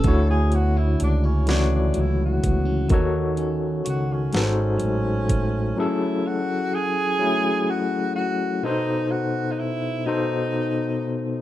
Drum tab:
HH |xxxxxx|xxxxxx|------|------|
SD |---o--|---o--|------|------|
BD |o----o|o----o|------|------|